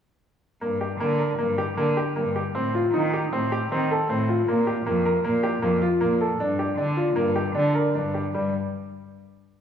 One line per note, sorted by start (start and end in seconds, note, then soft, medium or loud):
0.61 0.92 G2 medium
0.61 0.79 A#3 medium
0.81 0.98 G4 medium
1.00 1.31 D3 medium
1.00 1.18 A#3 medium
1.20 1.37 A#4 medium
1.39 1.70 G2 medium
1.39 1.56 A#3 medium
1.58 1.75 G4 medium
1.77 1.93 D3 medium
1.77 1.95 A#3 medium
1.97 2.14 G4 medium
2.16 2.47 G2 medium
2.16 2.33 A#3 medium
2.36 2.53 G4 medium
2.55 2.86 A2 medium
2.55 2.72 C4 medium
2.75 2.92 F4 medium
2.93 3.24 D#3 medium
2.93 3.11 D#4 medium
3.14 3.30 G4 medium
3.32 3.63 A2 medium
3.32 3.50 C4 medium
3.52 3.69 G4 medium
3.71 3.86 D#3 medium
3.71 3.88 C4 medium
3.91 4.08 A4 medium
4.09 4.39 A2 medium
4.09 4.26 C4 medium
4.29 4.46 F4 medium
4.47 4.77 A#2 medium
4.47 4.65 A#3 medium
4.67 4.84 G4 medium
4.86 5.16 F2 medium
4.86 5.03 A#3 medium
5.05 5.22 A#4 medium
5.24 5.54 A#2 medium
5.24 5.41 A#3 medium
5.43 5.60 G4 medium
5.62 5.77 F2 medium
5.62 5.79 A#3 medium
5.82 5.99 F4 medium
6.00 6.31 A#2 medium
6.00 6.18 A#3 medium
6.21 6.37 A4 medium
6.39 6.69 G2 medium
6.39 6.57 D4 medium
6.59 6.76 G4 medium
6.77 7.08 D3 medium
6.77 6.95 D4 medium
6.97 7.14 F4 medium
7.16 7.47 G2 medium
7.16 7.33 A#3 medium
7.36 7.53 G4 medium
7.55 7.71 D3 medium
7.55 7.72 D4 medium
7.75 7.93 A#4 medium
7.94 8.26 G2 medium
7.94 8.13 D4 medium
8.14 8.32 G4 soft
8.34 8.52 G2 medium
8.34 8.52 G3 medium